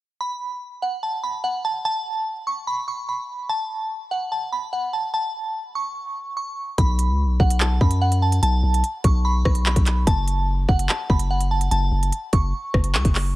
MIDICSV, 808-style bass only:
0, 0, Header, 1, 2, 480
1, 0, Start_track
1, 0, Tempo, 410959
1, 242, Time_signature, 4, 2, 24, 8
1, 15600, End_track
2, 0, Start_track
2, 0, Title_t, "808-style bass"
2, 0, Program_c, 0, 38
2, 7922, Note_on_c, 0, 35, 113
2, 8282, Note_on_c, 0, 37, 105
2, 8299, Note_off_c, 0, 35, 0
2, 8462, Note_on_c, 0, 35, 99
2, 8479, Note_off_c, 0, 37, 0
2, 8633, Note_off_c, 0, 35, 0
2, 8642, Note_on_c, 0, 35, 105
2, 9102, Note_off_c, 0, 35, 0
2, 9121, Note_on_c, 0, 42, 105
2, 9813, Note_off_c, 0, 42, 0
2, 9842, Note_on_c, 0, 35, 115
2, 10072, Note_off_c, 0, 35, 0
2, 10082, Note_on_c, 0, 35, 106
2, 10312, Note_off_c, 0, 35, 0
2, 10562, Note_on_c, 0, 35, 100
2, 11023, Note_off_c, 0, 35, 0
2, 11042, Note_on_c, 0, 35, 102
2, 11388, Note_off_c, 0, 35, 0
2, 11402, Note_on_c, 0, 35, 104
2, 11747, Note_off_c, 0, 35, 0
2, 11762, Note_on_c, 0, 30, 115
2, 12453, Note_off_c, 0, 30, 0
2, 12481, Note_on_c, 0, 30, 106
2, 12712, Note_off_c, 0, 30, 0
2, 12961, Note_on_c, 0, 30, 107
2, 13653, Note_off_c, 0, 30, 0
2, 13682, Note_on_c, 0, 30, 118
2, 13912, Note_off_c, 0, 30, 0
2, 13921, Note_on_c, 0, 30, 105
2, 14152, Note_off_c, 0, 30, 0
2, 14401, Note_on_c, 0, 30, 102
2, 14632, Note_off_c, 0, 30, 0
2, 14882, Note_on_c, 0, 30, 107
2, 15122, Note_on_c, 0, 37, 100
2, 15139, Note_off_c, 0, 30, 0
2, 15236, Note_off_c, 0, 37, 0
2, 15242, Note_on_c, 0, 30, 101
2, 15587, Note_off_c, 0, 30, 0
2, 15600, End_track
0, 0, End_of_file